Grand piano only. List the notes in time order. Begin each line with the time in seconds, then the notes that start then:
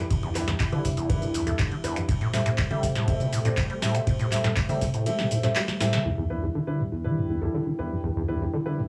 0.35 G3 D4 E4 B4
0.72 G3 D4 E4 B4
1.09 G3 D4 E4 B4
1.47 G3 D4 E4 A4
1.84 G3 D4 E4 B4
2.33 C4 G4 A4 E5
2.71 C4 G4 A4 E5
3.08 C4 G4 A4 E5
3.45 C4 G4 A4 D5
3.82 C4 G4 A4 E5
4.32 C4 G4 A4 E5
4.69 C4 G4 A4 E5
5.06 C4 G4 A4 E5
5.43 C4 G4 A4 E5
5.80 C4 G4 A4 E5
6.30 G3 D4 E4 B4
6.67 G3 D4 E4 B4
7.04 G3 D4 E4 B4
7.42 G3 D4 E4 A4
7.79 G3 D4 E4 B4
8.28 G3 D4 E4 B4
8.66 G3 D4 E4 B4